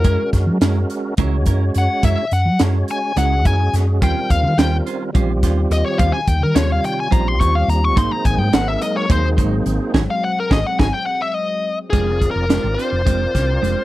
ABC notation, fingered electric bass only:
X:1
M:7/8
L:1/16
Q:1/4=106
K:G#m
V:1 name="Fingered electric bass" clef=bass
F,, z F,, F, F,,2 z2 C,,2 F,,2 F,, z | F,, z F,, F, F,,2 z2 C,,2 F,,2 F,,2 | D,, z D,, D, D,,2 z2 A,,,2 D,,2 D,, z | D,, z D,, D, D,,2 z2 A,,,2 D,,2 D,,2 |
G,,, z G,,, G,, G,,,2 z2 D,,2 G,,,2 G,,, z | G,,, z3 G,,, z G,,, z6 z | [K:Fdor] F,,,3 F,,,2 A,,, z F,,,3 C,,2 F,,, z |]